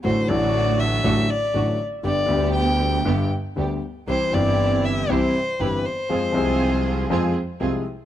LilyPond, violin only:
\new Staff \with { instrumentName = "Violin" } { \time 4/4 \key c \major \tempo 4 = 119 c''8 d''4 e''4 d''4 r8 | d''4 g''4. r4. | c''8 d''4 e''8 c''4 b'8 c''8~ | c''2~ c''8 r4. | }